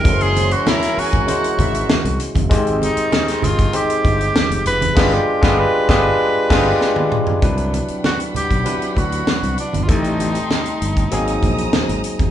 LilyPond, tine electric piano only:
\new Staff \with { instrumentName = "Tine electric piano" } { \time 4/4 \key aes \lydian \tempo 4 = 98 <gis cis' e' fis' a' ais'>4.~ <gis cis' e' fis' a' ais'>16 r16 <gis cis' e' fis' c''>4.~ <gis cis' e' fis' c''>16 r16 | <aes c' ees' g' c''>4.~ <aes c' ees' g' c''>16 r16 <aes c' ees' g' c''>4.~ <aes c' ees' g' c''>16 r16 | <aes d' f' g' b'>8 r16 <aes d' f' g' b'>8 r16 <aes d' f' g' b'>8 r8 <aes d' f' g' b'>8 r4 | <fis c' d' e' b'>4.~ <fis c' d' e' b'>16 r16 <fis c' d' e' b'>4.~ <fis c' d' e' b'>16 r16 |
<g a c' ees' a'>4.~ <g a c' ees' a'>16 r16 <ges bes c' ees' aes'>4.~ <ges bes c' ees' aes'>16 r16 | }